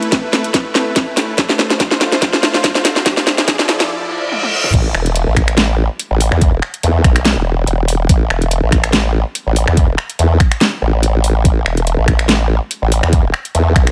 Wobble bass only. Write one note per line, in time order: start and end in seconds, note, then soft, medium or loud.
4.74 4.93 A1 loud
4.95 5.25 E1 loud
5.27 5.88 A1 loud
6.11 6.30 A1 medium
6.32 6.51 E2 loud
6.53 6.61 E1 loud
6.83 7.03 E2 loud
7.04 7.35 B1 loud
7.37 7.66 E1 loud
7.67 8.08 E1 medium
8.09 8.29 A1 loud
8.30 8.61 E1 loud
8.63 9.24 A1 loud
9.47 9.66 A1 medium
9.68 9.87 E2 loud
9.89 9.97 E1 loud
10.19 10.39 E2 loud
10.82 11.43 A1 loud
11.45 11.64 A1 loud
11.66 11.96 E1 loud
11.98 12.59 A1 medium
12.82 13.01 A1 loud
13.03 13.22 E2 loud
13.24 13.32 E1 medium
13.55 13.74 E2 loud
13.76 13.92 B1 medium